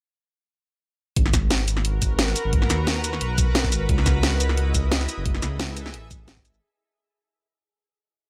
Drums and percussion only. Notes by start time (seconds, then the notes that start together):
1.16 kick, closed hi-hat
1.26 snare
1.34 kick, snare, closed hi-hat, shaker
1.50 snare, closed hi-hat
1.68 closed hi-hat, shaker
1.77 snare
1.85 closed hi-hat
2.02 kick, closed hi-hat, shaker
2.19 snare, closed hi-hat
2.28 shaker
2.36 closed hi-hat, shaker
2.53 kick, closed hi-hat
2.62 snare
2.70 snare, closed hi-hat, shaker
2.87 snare, closed hi-hat
3.04 closed hi-hat, shaker
3.13 snare
3.21 closed hi-hat
3.38 kick, closed hi-hat, shaker
3.55 snare, closed hi-hat
3.64 kick, shaker
3.72 closed hi-hat, shaker
3.89 kick, closed hi-hat
3.98 snare
4.06 kick, snare, closed hi-hat, shaker
4.23 snare, closed hi-hat
4.40 closed hi-hat, shaker
4.49 snare
4.57 closed hi-hat
4.74 kick, closed hi-hat, shaker
4.92 snare, closed hi-hat
5.01 shaker
5.09 closed hi-hat, shaker
5.26 kick, closed hi-hat
5.35 snare
5.42 snare, closed hi-hat, shaker
5.60 snare, closed hi-hat
5.77 closed hi-hat, shaker
5.86 snare
5.94 closed hi-hat
6.11 kick, closed hi-hat, shaker
6.28 snare, closed hi-hat
6.37 kick, shaker
6.45 closed hi-hat, shaker
6.54 shaker